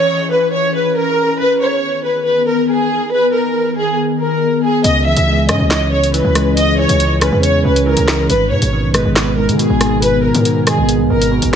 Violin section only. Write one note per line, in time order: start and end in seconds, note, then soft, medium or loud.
0.00 0.28 C#5 medium
0.31 0.50 B4 medium
0.52 0.72 C#5 medium
0.74 0.94 B4 medium
0.96 1.37 A#4 loud
1.39 1.58 B4 loud
1.60 2.01 C#5 medium
2.04 2.23 B4 medium
2.25 2.45 B4 medium
2.47 2.66 A#4 medium
2.69 3.09 G#4 medium
3.11 3.31 B4 loud
3.33 3.74 A#4 medium
3.77 3.96 G#4 medium
4.19 4.60 A#4 medium
4.63 4.82 G#4 loud
4.84 5.04 D#5 loud
5.06 5.46 E5 loud
5.49 5.68 D#5 medium
5.70 5.90 D#5 medium
5.92 6.11 C#5 medium
6.14 6.54 B4 medium
6.57 6.76 D#5 loud
6.78 7.19 C#5 loud
7.22 7.41 B4 medium
7.43 7.63 C#5 medium
7.65 7.84 B4 medium
7.87 8.27 A#4 medium
8.29 8.49 B4 loud
8.51 8.92 C#5 medium
8.94 9.14 B4 medium
9.16 9.35 B4 medium
9.38 9.57 A#4 medium
9.59 10.00 G#4 medium
10.02 10.22 B4 loud
10.24 10.64 A#4 medium
10.67 10.87 G#4 medium
11.10 11.51 A#4 medium